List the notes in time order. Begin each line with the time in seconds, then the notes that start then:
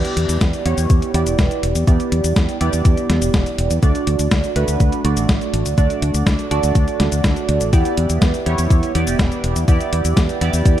Already playing: B3 E4 G4 D5
0.05 closed hi-hat, cabasa
0.17 E2, closed hi-hat
0.29 E2, closed hi-hat, cabasa
0.41 E2, kick, snare, closed hi-hat, cabasa
0.53 closed hi-hat, cabasa
0.65 E2 B3 E4 G4 C#5, closed hi-hat
0.78 E2, closed hi-hat, cabasa
0.90 E2, kick, closed hi-hat, cabasa
1.02 closed hi-hat, cabasa
1.14 E2 B3 E4 G4 D5, closed hi-hat
1.26 E1, closed hi-hat, cabasa
1.39 E1, kick, snare, closed hi-hat, cabasa
1.51 closed hi-hat, cabasa
1.63 E1, closed hi-hat
1.75 E2, closed hi-hat, cabasa
1.87 E2 B3 E4 G4 D5, kick, closed hi-hat, cabasa
2.00 closed hi-hat, cabasa
2.12 E2, closed hi-hat
2.24 E2, closed hi-hat, cabasa
2.36 kick, snare, closed hi-hat, cabasa
2.49 closed hi-hat, cabasa
2.61 E2 B3 E4 G4 D5, closed hi-hat
2.73 E2, closed hi-hat, cabasa
2.85 E2, kick, closed hi-hat, cabasa
2.97 closed hi-hat, cabasa
3.10 E2, snare, closed hi-hat
3.22 E1, closed hi-hat, cabasa
3.34 E1, kick, snare, closed hi-hat, cabasa
3.46 closed hi-hat, cabasa
3.58 E1, closed hi-hat
3.71 E2, closed hi-hat, cabasa
3.83 D2 A3 D4 F#4 D5, kick, closed hi-hat, cabasa
3.95 closed hi-hat, cabasa
4.07 D2, closed hi-hat
4.19 D2, closed hi-hat, cabasa
4.31 D2, kick, snare, closed hi-hat, cabasa
4.44 closed hi-hat, cabasa
4.56 D2 A3 D4 F#4 B4, closed hi-hat
4.68 D2, closed hi-hat, cabasa
4.80 D2, kick, closed hi-hat, cabasa
4.92 closed hi-hat, cabasa
5.04 D2 A3 D4 F#4 D5, closed hi-hat
5.17 A1, closed hi-hat, cabasa
5.29 A1, kick, snare, closed hi-hat, cabasa
5.41 closed hi-hat, cabasa
5.53 A1, closed hi-hat
5.66 D2, closed hi-hat, cabasa
5.78 D2 A3 D4 F#4 D5, kick, closed hi-hat, cabasa
5.90 closed hi-hat, cabasa
6.02 D2, closed hi-hat
6.14 D2, closed hi-hat, cabasa
6.27 D2, kick, snare, closed hi-hat, cabasa
6.39 closed hi-hat, cabasa
6.51 D2 A3 D4 F#4 D5, closed hi-hat
6.63 D2, closed hi-hat, cabasa
6.75 D2, kick, closed hi-hat, cabasa
6.88 closed hi-hat, cabasa
7.00 D2, snare, closed hi-hat
7.12 D2, closed hi-hat, cabasa
7.24 D2, kick, snare, closed hi-hat, cabasa
7.36 closed hi-hat, cabasa
7.49 D2, closed hi-hat
7.61 A1, closed hi-hat, cabasa
7.73 E2 B3 E4 G4 D5, kick, closed hi-hat, cabasa
7.85 closed hi-hat, cabasa
7.97 E2, closed hi-hat
8.10 E2, closed hi-hat, cabasa
8.22 E2, kick, snare, closed hi-hat, cabasa
8.34 closed hi-hat, cabasa
8.46 E2 B3 E4 G4 C#5, closed hi-hat
8.58 E2, closed hi-hat, cabasa
8.70 E2, kick, closed hi-hat, cabasa
8.83 closed hi-hat, cabasa
8.95 E2 B3 E4 G4 D5, closed hi-hat
9.07 E1, closed hi-hat, cabasa
9.19 E1, kick, snare, closed hi-hat, cabasa
9.32 closed hi-hat, cabasa
9.44 E1, closed hi-hat
9.56 E2, closed hi-hat, cabasa
9.68 E2 B3 E4 G4 D5, kick, closed hi-hat, cabasa
9.80 closed hi-hat, cabasa
9.93 E2, closed hi-hat
10.05 E2, closed hi-hat, cabasa
10.17 E2, kick, snare, closed hi-hat, cabasa
10.29 closed hi-hat, cabasa
10.41 E2 B3 E4 G4 D5, closed hi-hat
10.53 E2, closed hi-hat, cabasa
10.66 E2, kick, closed hi-hat, cabasa